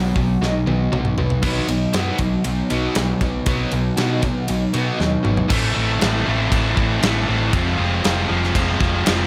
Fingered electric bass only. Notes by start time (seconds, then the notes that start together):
Already playing: B1
0.16 B1
0.41 B1
0.67 B1
0.92 B1
1.18 B1
1.43 B1
1.69 B1
1.94 F#2
2.19 B1
2.45 B1
2.70 B1
2.96 B1
3.21 B1
3.47 B1
3.72 B1
3.98 B2
4.49 B1
4.74 B2
5.00 D#2
5.26 G#1
5.50 A1
5.76 A1
6.02 A1
6.27 A1
6.52 A1
6.77 A1
7.03 A1
7.29 A1
7.53 F1
7.79 F1
8.05 F1
8.30 F1
8.55 F1
8.80 F1
9.07 F1